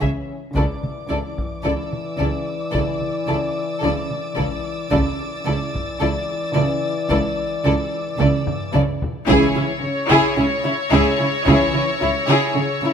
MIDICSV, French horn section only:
0, 0, Header, 1, 2, 480
1, 0, Start_track
1, 0, Tempo, 1090909
1, 244, Time_signature, 4, 2, 24, 8
1, 5690, End_track
2, 0, Start_track
2, 0, Title_t, "French horn section"
2, 0, Program_c, 0, 60
2, 0, Note_on_c, 0, 52, 51
2, 0, Note_on_c, 0, 61, 60
2, 166, Note_off_c, 0, 52, 0
2, 166, Note_off_c, 0, 61, 0
2, 241, Note_on_c, 0, 74, 61
2, 244, Note_on_c, 0, 52, 64
2, 2145, Note_off_c, 0, 74, 0
2, 2146, Note_off_c, 0, 52, 0
2, 2162, Note_on_c, 0, 74, 79
2, 2163, Note_on_c, 0, 52, 71
2, 4011, Note_off_c, 0, 52, 0
2, 4011, Note_off_c, 0, 74, 0
2, 4086, Note_on_c, 0, 52, 71
2, 4086, Note_on_c, 0, 61, 73
2, 4273, Note_off_c, 0, 52, 0
2, 4273, Note_off_c, 0, 61, 0
2, 5044, Note_on_c, 0, 61, 64
2, 5045, Note_on_c, 0, 52, 71
2, 5232, Note_off_c, 0, 61, 0
2, 5233, Note_off_c, 0, 52, 0
2, 5690, End_track
0, 0, End_of_file